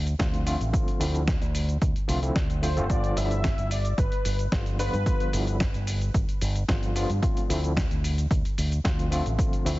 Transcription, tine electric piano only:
0.19 D3 F3 A3 C4 F4
0.46 D3 F3 A3 C4 F4
0.72 D3 F3 A3 C4 F4
0.99 D3 F3 A3 C4 E4
2.08 D3 F3 A3 C4 F4
2.22 D3 F3 A3 C4 E4
2.62 D3 F3 A3 C4 F4
2.76 D3 F3 A3 C4 F4
2.89 F3 G3
3.16 D3 F3 G3 B3 E4
4.52 D3 F3 G3 B3 F4
4.79 D3 F3 G3 B3 F4
5.06 D3 F3 G3 B3 F4
5.33 D3 F3 G3 B3 E4
6.69 D3 F3 G3 B3 F4
6.95 D3 F3 G3 B3 F4
7.22 D3 F3 A3 C4 F4
7.49 D3 F3 A3 C4 E4
8.84 D3 F3 A3 C4 F4
9.11 D3 F3 A3 C4 F4
9.38 D3 F3 A3 C4 F4
9.65 D3 F3 A3 C4 E4

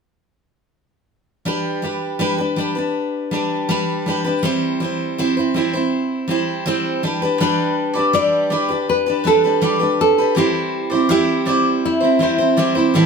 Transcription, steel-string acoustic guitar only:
1.45 G3 D4 G4 B4
1.82 G3 D4 G4 B4
2.19 G3 D4 G4 B4
2.38 D4 G4 B4
2.56 G3 D4 G4
2.60 B4
2.75 D4 G4 B4
3.31 G3 D4 G4 B4
3.69 G3 D4 G4 B4
4.06 G3 D4 G4 B4
4.25 D4 G4 B4
4.43 G3 C4 E4 C5
4.80 G3 C4 E4
4.84 C5
5.18 G3 C4 E4 C5
5.37 C4 E4 C5
5.54 G3 C4 E4 C5
5.73 C4 E4 C5
6.28 G3 C4 E4 C5
6.66 G3 C4 E4 C5
7.03 G3 D4 G4 B4
7.22 D4 G4 B4
7.40 G3 D4 G4 B4
7.95 D4 G4 B4
8.13 G3 D4 G4 B4
8.50 G3 D4 G4 B4
8.69 D4 G4 B4
9.06 D4 G4 B4
9.25 G3 D4 G4 B4
9.44 D4 G4 B4
9.62 G3 D4 G4 B4
9.79 D4 G4 B4
10.18 D4 G4 B4
10.36 G3 C4 E4 C5
10.91 C4 E4 C5
11.09 G3 C4 E4 C5
11.46 G3 C4 E4 C5
12.01 C4 E4 C5
12.19 G3 C4 E4 C5
12.38 C4 E4 C5
12.57 G3 C4 E4 C5
12.75 C4 E4 C5
12.94 A2 E3 G3 C4 E4 A4

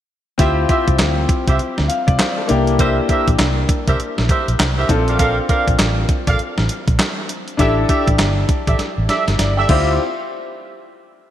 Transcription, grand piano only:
0.38 C4 E4 F4 G4
1.88 F5
2.07 D5
2.18 C5
2.38 A4
2.48 A#3 D4 E4 G4
4.88 C4 D4 F4 A4
7.57 D4 E4 G4 A4
9.39 D5
9.57 G5
9.69 C4 E4 F4 G4

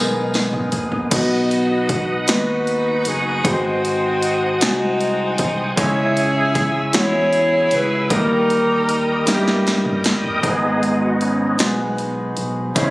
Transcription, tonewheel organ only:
Already playing: D#3 G#3 B3 G#4
1.12 B4 D#5 F#5 D#6
3.45 C5 G#5
5.77 C#5 E5 E6
8.09 A#4 D#5 G5 D#6
10.42 G#3 B3 D#4 G#4
11.01 F#4
11.22 C#4
11.61 B3
12.77 G#3 C#4 E4

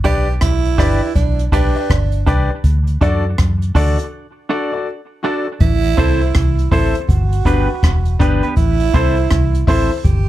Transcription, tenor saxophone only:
0.05 G4
0.42 E4
1.15 D4
1.53 D4
5.61 E4
7.09 F#4
8.57 E4
10.04 G4

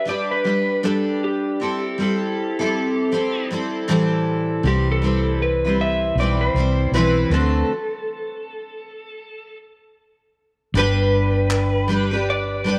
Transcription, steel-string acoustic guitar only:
0.05 G3 D4 G4 B4
0.44 G3 D4 G4 B4
0.83 G3 D4 G4 B4
1.60 G3 C4 E4 A4
1.98 G3 C4 E4 A4
2.59 G3 C4 E4 A4
3.12 G3 C4 E4 A4
3.51 G3 C4 E4 A4
3.88 A2 E3 G3 C4 E4 A4
4.63 G3 C4 E4 B4
5.02 G3 C4 E4 B4
5.64 G3 C4 E4 B4
6.18 G3 C4 E4 B4
6.56 G3 C4 E4
6.94 E3 G3 C4 E4 B4
7.31 D3 A3 C4 F#4 A4
10.75 G3 D4 G4 B4
11.88 G3 D4 G4 B4
12.11 D4 G4 B4
12.64 G3 D4 G4 B4

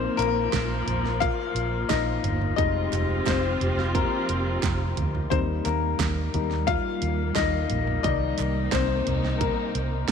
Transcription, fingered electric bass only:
0.19 A#1
0.53 A#1
0.87 A#1
1.55 A#1
1.90 A#1
2.24 G1
2.58 F1
2.93 F1
3.27 F1
3.61 F1
4.29 F1
4.63 F1
4.98 D2
5.32 D#2
5.66 D#2
5.99 D#2
6.34 D#2
7.02 D#2
7.36 D#2
7.71 A#1
8.04 C2
8.40 C2
8.73 C2
9.07 C2
9.75 C2

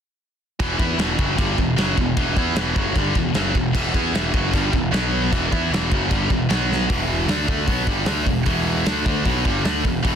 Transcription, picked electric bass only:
0.60 E1
0.79 E2
0.99 E1
1.19 F#1
1.38 G1
1.58 E1
1.78 F#1
1.97 E1
2.17 E1
2.36 E2
2.56 E1
2.76 F#1
2.96 G1
3.15 E1
3.34 F#1
3.55 E1
3.74 E1
3.94 E2
4.14 E1
4.34 F#1
4.53 G1
4.73 E1
4.93 B1
5.32 E1
5.52 E2
5.71 E1
5.91 F#1
6.11 G1
6.30 E1
6.49 B1
6.90 E1
7.28 D2
7.48 D2
7.67 B1
7.87 G1
8.05 D2
8.26 E1
8.46 E1
8.86 D2
9.06 D2
9.26 B1
9.45 G1
9.65 D2
9.85 E1
10.04 E1

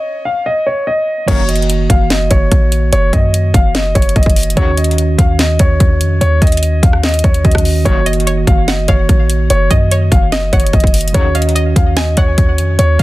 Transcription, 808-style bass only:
1.28 F#1
1.90 F#1
2.31 F#1
2.52 A#1
2.93 F#1
3.13 F#2
3.54 F#1
3.95 F#1
4.16 F#1
4.57 D#2
5.18 D#2
5.60 D#2
5.80 D#2
6.01 F2
6.21 D#2
6.42 D#2
6.83 D#2
7.24 D#2
7.45 D#2
7.86 F#1
8.47 F#1
8.88 F#1
9.09 A#1
9.50 F#1
9.71 F#2
10.12 F#1
10.53 F#1
10.73 F#1
11.14 D#2
11.76 D#2
12.17 D#2
12.38 D#2
12.58 F2
12.79 D#2
12.99 D#2

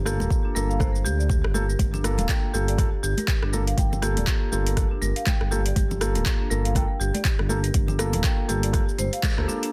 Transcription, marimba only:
0.06 G4
0.20 A#4
0.45 D4
0.55 A#4
0.69 F5
0.80 C5
1.05 G4
1.19 D5
1.29 G4
1.54 G4
1.69 A#4
1.94 D4
2.04 A#4
2.19 F5
2.54 G4
2.68 D5
2.78 G4
3.03 G4
3.18 A#4
3.42 D4
3.53 A#4
3.67 F5
3.78 G5
4.02 G4
4.17 D5
4.52 G4
4.66 A#4
4.91 D4
5.02 A#4
5.16 F5
5.51 G4
5.66 D5
5.76 G4
6.01 G4
6.15 A#4
6.40 D4
6.50 A#4
6.65 F5
6.75 G5
7.00 G4
7.14 D5
7.49 G4
7.63 A#4
7.88 D4
7.99 A#4
8.13 F5
8.24 G5
8.49 G4
8.63 D5
8.74 G4
8.98 C5
9.13 F5
9.24 A#4
9.38 G4
9.48 D4
9.63 D4

